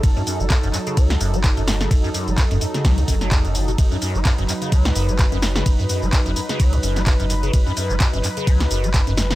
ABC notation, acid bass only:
X:1
M:4/4
L:1/16
Q:"Swing 16ths" 1/4=128
K:F#dor
V:1 name="Acid bass" clef=bass
F,, F,, F,, A, F,, F,, F,, C, F, F,, F,, A, F,, F,, F,, C, | F,, F,, F,, A, F,, F,, F,, C, F, F,, F,, F, E,, F,, F,,, B,, | F,, F,, F,, A, F,, F,, F,, C, F, F,, F,, A, F,, F,, F,, C, | F,, F,, F,, A, F,, F,, F,, C, F, F,, F,, A, F,, F,, F,, C, |
F,, F,, F,, A, F,, F,, F,, C, F, F,, F,, A, F,, F,, F,, C, |]